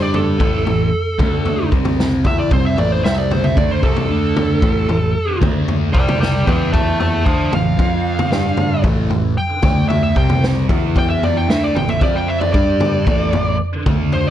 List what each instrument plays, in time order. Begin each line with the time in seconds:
Already playing: picked electric bass G2, distorted electric guitar G3 D4 G4
0.02 lead electric guitar D5
0.14 lead electric guitar A4, floor tom, mid tom
0.38 picked electric bass A1, distorted electric guitar A2 E3 A3, kick, floor tom
0.65 picked electric bass A1, distorted electric guitar A2 E3, floor tom
1.18 picked electric bass D2, distorted electric guitar D3 A3 D4, kick, floor tom, mid tom
1.45 floor tom
1.71 picked electric bass C2, distorted electric guitar C3 G3 C4, kick
1.85 floor tom, mid tom
2.00 snare
2.24 picked electric bass E2, distorted electric guitar E3 B3 E4, lead electric guitar E5, kick, floor tom, mid tom
2.39 lead electric guitar D5
2.51 picked electric bass C2, distorted electric guitar C3 G3 C4, lead electric guitar C5, kick, floor tom
2.66 lead electric guitar E5
2.77 picked electric bass A1, distorted electric guitar A2 E3 A3, lead electric guitar D5, floor tom
2.92 lead electric guitar C5
3.04 picked electric bass C2, distorted electric guitar C3 G3 C4, lead electric guitar E5, snare
3.18 lead electric guitar D5
3.31 lead electric guitar C5, floor tom, mid tom
3.44 lead electric guitar E5, mid tom
3.56 picked electric bass D2, distorted electric guitar D3 A3 D4, lead electric guitar D5, kick, floor tom
3.72 lead electric guitar C5
3.82 picked electric bass C2, distorted electric guitar C3 G3 C4, lead electric guitar A4, kick
3.96 floor tom
4.09 picked electric bass D2, distorted electric guitar D3 A3 D4
4.36 floor tom, mid tom
4.61 picked electric bass A1, distorted electric guitar A2 E3 A3, kick, floor tom
4.88 picked electric bass A1, distorted electric guitar A2 E3, floor tom
5.40 picked electric bass D2, distorted electric guitar D3 A3 D4, kick, floor tom, mid tom
5.68 floor tom
5.92 picked electric bass C2, distorted electric guitar C3 G3 C4, lead electric guitar D5 G5, kick
6.08 floor tom, mid tom
6.20 lead electric guitar D5 G5, snare
6.45 picked electric bass E2, distorted electric guitar E3 B3 E4, lead electric guitar B4 G5, kick, floor tom, mid tom
6.73 lead electric guitar E5 A5, kick, floor tom
7.00 lead electric guitar E5 A5, floor tom
7.25 picked electric bass D2, distorted electric guitar D3 A3 D4, lead electric guitar C5 A5, kick
7.52 picked electric bass A1, distorted electric guitar A2 E3, lead electric guitar F5, floor tom, mid tom
7.77 picked electric bass F2, distorted electric guitar F3 C4 F4, kick, floor tom
8.19 floor tom, mid tom
8.30 picked electric bass G2, distorted electric guitar G3 D4 G4, snare
8.57 floor tom, mid tom
8.83 picked electric bass A1, distorted electric guitar A2 E3 A3, kick, floor tom
9.10 picked electric bass A1, distorted electric guitar A2 E3, floor tom
9.38 lead electric guitar G5
9.63 picked electric bass D2, distorted electric guitar D3 A3 D4, kick, floor tom, mid tom
9.89 lead electric guitar E5, floor tom
10.03 lead electric guitar E5
10.16 picked electric bass C2, distorted electric guitar C3 G3 C4, lead electric guitar G5, kick
10.29 floor tom, mid tom
10.44 snare
10.69 picked electric bass E2, distorted electric guitar E3 B3 E4, kick, floor tom, mid tom
10.96 lead electric guitar G5, kick, floor tom
11.10 lead electric guitar E5
11.23 lead electric guitar D5, floor tom
11.37 lead electric guitar G5
11.48 picked electric bass D2, distorted electric guitar D3 A3 D4, lead electric guitar E5, snare
11.64 lead electric guitar D5
11.75 picked electric bass A1, distorted electric guitar A2 E3, lead electric guitar G5, floor tom, mid tom
11.88 lead electric guitar E5, mid tom
12.01 picked electric bass F2, distorted electric guitar F3 C4 F4, lead electric guitar D5, kick, floor tom
12.16 lead electric guitar G5
12.28 lead electric guitar E5
12.40 lead electric guitar D5, floor tom
12.53 picked electric bass G2, distorted electric guitar G3 D4 G4, lead electric guitar D5, kick
12.80 floor tom, mid tom
13.06 picked electric bass A1, distorted electric guitar A2 E3 A3, kick, floor tom
13.33 picked electric bass A1, distorted electric guitar A2 E3, floor tom
13.86 picked electric bass D2, distorted electric guitar D3 A3 D4, kick, floor tom, mid tom
14.12 lead electric guitar C5, floor tom